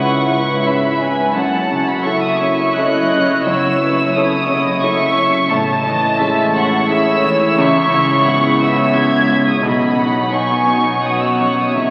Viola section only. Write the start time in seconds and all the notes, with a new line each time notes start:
Already playing: E4 B4
1.37 E4 C#5
5.53 E4 C#5
9.63 D#4 C#5
11.77 E5